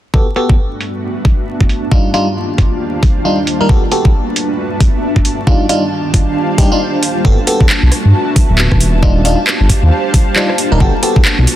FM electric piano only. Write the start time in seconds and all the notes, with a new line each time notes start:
0.14 B3 F#4 G4 A4
0.36 B3 F#4 G4 A4
1.92 G3 D4 D#4 F4
2.14 G3 D4 D#4 F4
3.25 G3 D4 D#4 F4
3.61 G3 D4 D#4 A#4
3.69 B3 F#4 G4
3.92 B3 F#4 G4 A4
5.47 G3 D4 D#4 F4
5.69 G3 D4 D#4 F4
6.58 G3 D4 D#4 G4
6.72 G3 D4 D#4 F4
7.25 B3 F#4 G4 A4
7.47 B3 F#4 G4 A4
9.03 G3 D4 D#4 F4
9.25 G3 D4 D#4 F4
10.36 G3 D4 D#4 F4
10.72 G3 D4 D#4 A#4
10.81 B3 F#4 G4 A4
11.03 B3 F#4 G4 A4